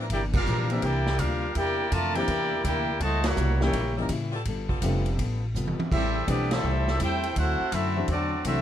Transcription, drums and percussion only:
0.10 kick, ride
0.33 kick, crash
0.46 hi-hat pedal
0.70 ride
0.82 kick, ride
1.06 snare
1.19 kick, hi-hat pedal, ride
1.55 kick, ride
1.92 kick, hi-hat pedal, ride
2.15 ride
2.28 kick, ride
2.64 kick, hi-hat pedal, ride
3.00 kick, ride
3.24 snare, ride
3.37 hi-hat pedal
3.61 snare
3.73 kick, ride
4.09 kick, hi-hat pedal, ride
4.45 kick, ride
4.69 kick
4.82 kick, hi-hat pedal, ride
5.06 ride
5.19 kick, ride
5.55 hi-hat pedal
5.67 high tom
5.80 high tom
5.92 kick, crash
6.28 kick, hi-hat pedal, ride
6.51 snare, ride
6.87 snare
7.00 kick, hi-hat pedal, ride
7.23 ride
7.36 kick, ride
7.72 kick, hi-hat pedal, ride
8.08 kick, ride
8.45 kick, hi-hat pedal, ride

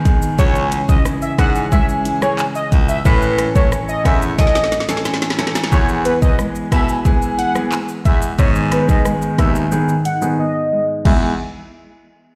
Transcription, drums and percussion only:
0.05 kick, closed hi-hat, shaker
0.22 shaker
0.39 kick, shaker
0.55 shaker
0.72 closed hi-hat, shaker
0.89 kick, shaker
1.05 cross-stick, shaker
1.22 shaker
1.38 kick, cross-stick, closed hi-hat, shaker
1.55 shaker
1.72 kick, shaker
1.89 shaker
2.05 closed hi-hat, shaker
2.22 cross-stick, shaker
2.38 clap, shaker
2.55 shaker
2.72 kick, closed hi-hat, shaker
2.89 shaker
3.05 kick, shaker
3.22 shaker
3.39 cross-stick, closed hi-hat, shaker
3.55 kick, shaker
3.72 cross-stick, shaker
3.89 shaker
4.05 kick, cross-stick, closed hi-hat, shaker
4.22 shaker
4.39 kick, snare, shaker
4.47 snare
4.55 snare, shaker
4.64 snare
4.72 snare, closed hi-hat, shaker
4.80 snare
4.89 snare, shaker
4.97 snare
5.05 snare, shaker
5.14 snare
5.22 snare, shaker
5.30 snare
5.39 snare, closed hi-hat, shaker
5.47 snare
5.55 snare, shaker
5.64 snare
5.72 kick, shaker
5.88 shaker
6.05 closed hi-hat, shaker
6.22 kick, shaker
6.39 cross-stick, shaker
6.55 shaker
6.72 kick, cross-stick, closed hi-hat, shaker
6.89 shaker
7.05 kick, shaker
7.22 shaker
7.39 closed hi-hat, shaker
7.55 cross-stick, shaker
7.72 clap, shaker
7.88 shaker
8.05 kick, closed hi-hat, shaker
8.22 shaker
8.39 kick, shaker
8.55 shaker
8.72 cross-stick, closed hi-hat, shaker
8.89 kick, shaker
9.05 cross-stick, shaker
9.22 shaker
9.38 kick, cross-stick, closed hi-hat, shaker
9.55 shaker
9.72 shaker
9.89 shaker
10.05 closed hi-hat, shaker
10.22 shaker
11.05 kick, crash

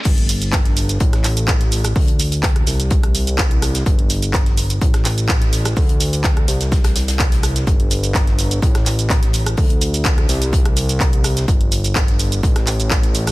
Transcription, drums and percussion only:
0.05 kick, closed hi-hat, crash, shaker
0.18 closed hi-hat
0.29 closed hi-hat, open hi-hat, shaker
0.42 closed hi-hat, shaker
0.53 kick, snare, clap, closed hi-hat, shaker
0.65 snare, closed hi-hat
0.77 closed hi-hat, open hi-hat, shaker
0.89 closed hi-hat, shaker
1.00 kick, closed hi-hat, shaker
1.13 cross-stick, snare, closed hi-hat
1.24 clap, closed hi-hat, open hi-hat, shaker
1.37 closed hi-hat, shaker
1.48 kick, snare, clap, closed hi-hat, shaker
1.61 snare, closed hi-hat
1.72 closed hi-hat, open hi-hat, shaker
1.85 cross-stick, closed hi-hat, shaker
1.96 kick, open hi-hat, shaker
2.07 closed hi-hat
2.20 closed hi-hat, open hi-hat, shaker
2.32 closed hi-hat, shaker
2.43 kick, snare, clap, closed hi-hat, shaker
2.56 cross-stick, closed hi-hat
2.67 closed hi-hat, open hi-hat, shaker
2.80 closed hi-hat, shaker
2.90 kick, closed hi-hat, shaker
3.03 cross-stick, closed hi-hat
3.15 closed hi-hat, open hi-hat, shaker
3.27 closed hi-hat, shaker
3.38 kick, snare, clap, closed hi-hat, shaker
3.51 closed hi-hat
3.62 cross-stick, closed hi-hat, open hi-hat, shaker
3.75 snare, closed hi-hat, shaker
3.86 kick, closed hi-hat, shaker
3.99 closed hi-hat
4.10 closed hi-hat, open hi-hat, shaker
4.23 closed hi-hat, shaker
4.33 kick, snare, clap, closed hi-hat, shaker
4.46 snare, closed hi-hat
4.57 closed hi-hat, open hi-hat, shaker
4.70 closed hi-hat, shaker
4.81 kick, closed hi-hat, shaker
4.94 cross-stick, snare, closed hi-hat
5.05 clap, closed hi-hat, open hi-hat, shaker
5.18 closed hi-hat, shaker
5.28 kick, snare, clap, closed hi-hat, shaker
5.42 snare, closed hi-hat
5.53 closed hi-hat, open hi-hat, shaker
5.65 cross-stick, closed hi-hat, shaker
5.77 kick, open hi-hat, shaker
5.89 closed hi-hat
6.00 closed hi-hat, open hi-hat, shaker
6.13 closed hi-hat, shaker
6.24 kick, snare, clap, closed hi-hat, shaker
6.37 cross-stick, closed hi-hat
6.48 closed hi-hat, open hi-hat, shaker
6.61 snare, closed hi-hat, shaker
6.72 kick, snare, closed hi-hat, shaker
6.84 cross-stick, snare, closed hi-hat
6.96 snare, closed hi-hat, open hi-hat, shaker
7.08 snare, closed hi-hat, shaker
7.19 kick, snare, clap, closed hi-hat, shaker
7.32 snare, closed hi-hat
7.43 cross-stick, closed hi-hat, open hi-hat, shaker
7.55 snare, closed hi-hat, shaker
7.67 kick, closed hi-hat, shaker
7.80 closed hi-hat
7.91 closed hi-hat, open hi-hat, shaker
8.04 closed hi-hat, shaker
8.15 kick, snare, clap, closed hi-hat, shaker
8.27 snare, closed hi-hat
8.39 closed hi-hat, open hi-hat, shaker
8.51 closed hi-hat, shaker
8.62 kick, closed hi-hat, shaker
8.75 cross-stick, snare, closed hi-hat
8.86 clap, closed hi-hat, open hi-hat, shaker
8.99 closed hi-hat, shaker
9.10 kick, snare, clap, closed hi-hat, shaker
9.22 snare, closed hi-hat
9.33 closed hi-hat, open hi-hat, shaker
9.46 cross-stick, closed hi-hat, shaker
9.57 kick, open hi-hat, shaker
9.70 closed hi-hat
9.81 closed hi-hat, open hi-hat, shaker
9.94 closed hi-hat, shaker
10.04 kick, snare, clap, closed hi-hat, shaker
10.18 cross-stick, closed hi-hat
10.29 closed hi-hat, open hi-hat, shaker
10.42 closed hi-hat, shaker
10.53 kick, closed hi-hat, shaker
10.65 cross-stick, closed hi-hat
10.77 closed hi-hat, open hi-hat, shaker
10.89 closed hi-hat, shaker
11.00 kick, snare, clap, closed hi-hat, shaker
11.13 closed hi-hat
11.24 cross-stick, closed hi-hat, open hi-hat, shaker
11.37 snare, closed hi-hat, shaker
11.48 kick, closed hi-hat, shaker
11.61 closed hi-hat
11.72 closed hi-hat, open hi-hat, shaker
11.84 closed hi-hat, shaker
11.95 kick, snare, clap, closed hi-hat, shaker
12.08 snare, closed hi-hat
12.19 closed hi-hat, open hi-hat, shaker
12.32 closed hi-hat, shaker
12.43 kick, closed hi-hat, shaker
12.56 cross-stick, snare, closed hi-hat
12.67 clap, closed hi-hat, open hi-hat, shaker
12.80 closed hi-hat, shaker
12.91 kick, snare, clap, closed hi-hat, shaker
13.03 snare, closed hi-hat
13.14 closed hi-hat, open hi-hat, shaker
13.27 cross-stick, closed hi-hat, shaker

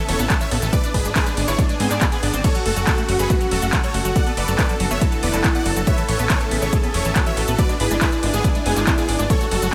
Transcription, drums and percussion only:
0.09 open hi-hat, ride
0.19 closed hi-hat, shaker
0.30 kick, clap, closed hi-hat, ride, shaker
0.41 closed hi-hat, shaker
0.51 open hi-hat, ride
0.62 closed hi-hat, shaker
0.73 kick, closed hi-hat, ride, shaker
0.84 closed hi-hat, shaker
0.94 kick, open hi-hat, ride
1.05 closed hi-hat, shaker
1.16 kick, clap, closed hi-hat, ride, shaker
1.26 closed hi-hat, shaker
1.37 open hi-hat, ride
1.48 closed hi-hat, shaker
1.58 kick, closed hi-hat, ride, shaker
1.69 closed hi-hat, shaker
1.80 open hi-hat, ride
1.91 clap, closed hi-hat, shaker
2.01 kick, clap, closed hi-hat, ride, shaker
2.12 closed hi-hat, shaker
2.23 open hi-hat, ride
2.34 closed hi-hat, shaker
2.44 kick, closed hi-hat, crash, ride, shaker
2.55 closed hi-hat, shaker
2.66 open hi-hat, ride
2.76 closed hi-hat, shaker
2.87 kick, clap, closed hi-hat, ride, shaker
2.98 closed hi-hat, shaker
3.09 open hi-hat, ride
3.19 closed hi-hat, shaker
3.30 kick, closed hi-hat, ride, shaker
3.41 closed hi-hat, shaker
3.51 open hi-hat, ride
3.62 closed hi-hat, shaker
3.73 kick, clap, closed hi-hat, ride, shaker
3.84 closed hi-hat, shaker
3.94 open hi-hat, ride
4.05 closed hi-hat, shaker
4.16 kick, closed hi-hat, ride, shaker
4.26 closed hi-hat, shaker
4.37 open hi-hat, ride
4.48 closed hi-hat, shaker
4.59 kick, clap, closed hi-hat, ride, shaker
4.69 closed hi-hat, shaker
4.80 open hi-hat, ride
4.91 shaker
5.01 kick, closed hi-hat, ride, shaker
5.12 closed hi-hat, shaker
5.23 open hi-hat, ride
5.34 clap, closed hi-hat, shaker
5.44 kick, clap, closed hi-hat, ride, shaker
5.55 closed hi-hat, shaker
5.66 open hi-hat, ride
5.76 closed hi-hat, shaker
5.87 kick, closed hi-hat, ride, shaker
5.98 closed hi-hat, shaker
6.09 open hi-hat, ride
6.19 closed hi-hat, shaker
6.30 kick, clap, closed hi-hat, ride, shaker
6.41 closed hi-hat, shaker
6.51 open hi-hat, ride
6.62 closed hi-hat, shaker
6.73 kick, closed hi-hat, ride, shaker
6.83 closed hi-hat, shaker
6.94 open hi-hat, ride
7.05 closed hi-hat, shaker
7.16 kick, clap, closed hi-hat, ride, shaker
7.26 closed hi-hat, shaker
7.37 open hi-hat, ride
7.48 closed hi-hat, shaker
7.59 kick, closed hi-hat, ride, shaker
7.69 closed hi-hat, shaker
7.80 open hi-hat, ride
7.91 closed hi-hat, shaker
8.01 kick, clap, closed hi-hat, ride, shaker
8.12 closed hi-hat, shaker
8.23 open hi-hat, ride
8.34 closed hi-hat, shaker
8.44 kick, closed hi-hat, ride, shaker
8.55 closed hi-hat, shaker
8.66 open hi-hat, ride
8.76 clap, closed hi-hat, shaker
8.87 kick, clap, closed hi-hat, ride, shaker
8.98 closed hi-hat, shaker
9.09 open hi-hat, ride
9.19 closed hi-hat, shaker
9.30 kick, closed hi-hat, ride, shaker
9.41 closed hi-hat, shaker
9.51 open hi-hat, ride
9.62 closed hi-hat, shaker

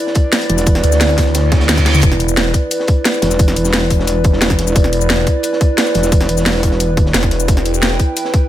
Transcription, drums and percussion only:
0.07 snare
0.15 kick, closed hi-hat
0.32 snare, closed hi-hat, cabasa
0.41 closed hi-hat, cabasa
0.50 closed hi-hat
0.58 closed hi-hat, cabasa
0.66 kick, closed hi-hat, cabasa
0.75 snare
0.83 closed hi-hat, cabasa
0.92 snare, cabasa
1.01 snare, closed hi-hat, open hi-hat, cabasa
1.09 snare
1.18 kick, snare, closed hi-hat, open hi-hat, cabasa
1.26 snare
1.35 snare, closed hi-hat, cabasa
1.52 kick, snare, closed hi-hat
1.60 snare, closed hi-hat
1.69 snare, closed hi-hat, cabasa
1.77 kick, snare, closed hi-hat, cabasa
1.85 snare, closed hi-hat
1.90 snare, closed hi-hat
1.94 snare, closed hi-hat, mid tom, cabasa
2.03 kick, closed hi-hat, cabasa
2.12 snare
2.20 closed hi-hat, cabasa
2.29 cabasa
2.37 snare, closed hi-hat, cabasa
2.45 snare
2.54 kick, closed hi-hat, cabasa
2.71 closed hi-hat, cabasa
2.80 snare
2.87 kick, closed hi-hat
3.05 snare, closed hi-hat, cabasa
3.14 cabasa
3.22 snare, closed hi-hat
3.31 snare, cabasa
3.39 kick, closed hi-hat, cabasa
3.48 snare
3.56 closed hi-hat, cabasa
3.65 snare, cabasa
3.73 snare, closed hi-hat, open hi-hat, cabasa
3.90 kick, closed hi-hat, open hi-hat, cabasa
3.99 snare
4.07 closed hi-hat, cabasa
4.24 kick, closed hi-hat
4.33 snare
4.42 snare, closed hi-hat, cabasa
4.50 kick, snare, cabasa
4.59 snare, closed hi-hat
4.67 cabasa
4.76 kick, closed hi-hat, cabasa
4.84 snare
4.93 closed hi-hat, cabasa
5.01 cabasa
5.09 snare, closed hi-hat, cabasa
5.19 snare
5.27 kick, closed hi-hat, cabasa
5.43 closed hi-hat, cabasa
5.53 snare
5.61 kick, closed hi-hat
5.78 snare, closed hi-hat, cabasa
5.86 cabasa
5.94 snare, closed hi-hat
6.03 snare, cabasa
6.12 kick, closed hi-hat, cabasa
6.21 snare
6.29 closed hi-hat, cabasa
6.37 snare, cabasa
6.46 snare, closed hi-hat, open hi-hat, cabasa
6.63 kick, closed hi-hat, open hi-hat, cabasa
6.71 snare
6.80 closed hi-hat, cabasa
6.97 kick, closed hi-hat
7.06 snare
7.14 snare, closed hi-hat, cabasa
7.23 kick, snare, cabasa
7.31 snare, closed hi-hat
7.40 cabasa
7.48 kick, closed hi-hat, cabasa
7.57 snare
7.65 closed hi-hat, cabasa
7.74 cabasa
7.83 snare, closed hi-hat, cabasa
7.91 snare
8.00 kick, closed hi-hat, cabasa
8.17 closed hi-hat, cabasa
8.25 snare
8.34 kick, closed hi-hat

